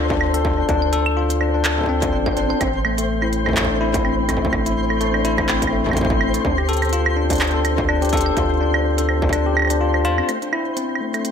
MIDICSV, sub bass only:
0, 0, Header, 1, 2, 480
1, 0, Start_track
1, 0, Key_signature, 0, "minor"
1, 0, Tempo, 480000
1, 687, Time_signature, 4, 2, 24, 8
1, 11313, End_track
2, 0, Start_track
2, 0, Title_t, "Sub bass"
2, 0, Program_c, 0, 38
2, 0, Note_on_c, 0, 38, 94
2, 630, Note_off_c, 0, 38, 0
2, 687, Note_on_c, 0, 38, 95
2, 2128, Note_on_c, 0, 33, 82
2, 2142, Note_off_c, 0, 38, 0
2, 2295, Note_off_c, 0, 33, 0
2, 2368, Note_on_c, 0, 33, 83
2, 2535, Note_off_c, 0, 33, 0
2, 2608, Note_on_c, 0, 33, 91
2, 4470, Note_off_c, 0, 33, 0
2, 4527, Note_on_c, 0, 33, 91
2, 6390, Note_off_c, 0, 33, 0
2, 6447, Note_on_c, 0, 38, 94
2, 8309, Note_off_c, 0, 38, 0
2, 8368, Note_on_c, 0, 38, 95
2, 10047, Note_on_c, 0, 40, 88
2, 10062, Note_off_c, 0, 38, 0
2, 10215, Note_off_c, 0, 40, 0
2, 11313, End_track
0, 0, End_of_file